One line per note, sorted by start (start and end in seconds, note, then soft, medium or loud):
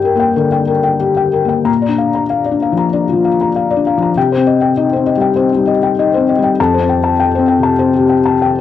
0.00 0.33 G2 medium
0.00 1.00 G4 soft
0.00 0.05 A#4 soft
0.00 0.20 G5 medium
0.05 0.30 A#4 soft
0.15 0.50 A#3 soft
0.20 0.46 G5 soft
0.36 0.71 D3 soft
0.36 0.62 A#4 soft
0.52 0.78 G5 soft
0.67 0.94 A#4 soft
0.84 1.10 G5 soft
1.00 1.27 G4 soft
1.17 1.44 G5 soft
1.33 1.60 A#4 soft
1.44 1.67 A#3 soft
1.44 1.66 G5 soft
1.65 2.89 A#2 soft
1.65 1.92 A#5 soft
1.82 2.08 D5 soft
1.88 2.23 D4 soft
1.98 2.24 F5 soft
2.15 2.41 A#5 soft
2.30 2.56 F5 soft
2.45 2.72 D5 soft
2.51 2.85 D4 soft
2.62 2.88 F5 soft
2.72 3.06 F3 soft
2.77 3.03 A#5 soft
2.93 3.26 D4 soft
2.93 3.18 D5 soft
3.09 3.34 F4 soft
3.13 3.47 F3 soft
3.25 3.49 F5 soft
3.41 3.65 A#5 soft
3.56 3.80 F5 soft
3.71 3.95 D5 soft
3.76 4.08 D4 soft
3.87 4.10 F5 soft
3.97 4.17 F3 soft
4.02 4.17 A#5 soft
4.17 5.34 C3 soft
4.17 4.41 G5 soft
4.32 4.56 C5 soft
4.37 4.69 C4 soft
4.47 4.71 D#5 soft
4.61 4.86 G5 soft
4.77 5.10 D#4 soft
4.77 5.01 D#5 soft
4.93 5.29 C4 soft
4.93 5.17 C5 soft
5.06 5.31 D#5 soft
5.17 5.50 G3 soft
5.17 5.46 G5 soft
5.36 5.69 C4 soft
5.36 5.61 C5 soft
5.52 5.89 G3 soft
5.52 5.77 D#4 soft
5.67 5.92 D#5 soft
5.83 6.07 G5 soft
5.99 6.31 D#4 soft
5.99 6.23 D#5 soft
6.14 6.50 C4 soft
6.14 6.38 C5 soft
6.29 6.52 D#5 soft
6.39 6.58 G3 soft
6.44 6.58 G5 soft
6.60 7.76 F2 medium
6.60 6.83 A5 medium
6.74 6.97 C5 soft
6.79 7.10 C4 soft
6.89 7.13 G5 soft
7.04 7.27 A5 soft
7.20 7.43 G5 medium
7.35 7.71 C4 soft
7.35 7.58 C5 soft
7.48 7.72 G5 soft
7.59 7.91 C3 soft
7.63 7.88 A5 soft
7.79 8.12 C4 soft
7.79 8.03 C5 soft
7.94 8.19 G4 soft
7.99 8.33 C3 soft
8.09 8.35 G5 soft
8.25 8.51 A5 soft
8.42 8.61 G5 soft